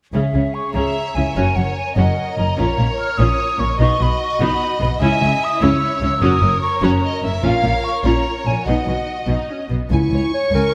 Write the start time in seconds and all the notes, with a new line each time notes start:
0.13 C#2 C#3 C#4 G#4 C#5 E5
0.34 C#2 C#3 C#4
0.54 C#6
0.74 C#2 C#3 C#4 G#4 E5 A#5
1.15 C#2 C#3 C#4 E4 G#5
1.35 F#1 F#2 C#4 F#4 A#4 C#5 G#5
1.56 F#1 F#2 A#3 C#4 F#5
1.77 G#5
1.96 F#1 F#2 C#4 F#4 D#5 F#5
2.38 F#1 F#2 C#4 A#5
2.57 A#1 A#2 C#4 F4 C#5 A#5
2.78 A#1 A#2 A#3 C#4
3.00 F6
3.18 A#1 A#2 C#4 F4 D#6
3.59 A#1 A#2 C#4 C#6
3.79 B1 B2 B3 D#4 F#4 D#5 C#6
3.99 B1 B2 F#3 B3 B5
4.23 C#6
4.41 B1 B2 B3 D#4 B5
4.81 B1 B2 B3 B5
5.00 C#2 C#3 C#4 E4 E5 G#5
5.21 C#2 C#3 G#3 C#4
5.44 D#6
5.61 C#2 C#3 C#4 E4 C#5 E6
6.01 C#2 C#3 C#4 E6
6.21 F#1 F#2 C#4 F#4 A#4 D#6
6.41 F#1 F#2 A#3 C#4
6.62 C#6
6.81 F#1 F#2 C#4 F#4 C#5 A#5
7.03 D#5
7.23 F#1 F#2 C#4 E5
7.42 A#1 A#2 C#4 F4 C#5 F5
7.63 A#1 A#2 A#3 C#4
7.84 C#6
8.04 A#1 A#2 C#4 F4 C#5 A#5
8.46 A#1 A#2 C#4 G#5
8.66 B1 B2 B3 D#4 F#4 D#5 F#5
8.87 B1 B2 F#3 B3
9.27 B1 B2 D#4
9.50 C#4
9.70 B1 B2 B3
9.91 C#2 E4 G#5 C#6
10.11 C#2 C#5
10.34 C#5
10.52 C#2 C#4 A#4 G#5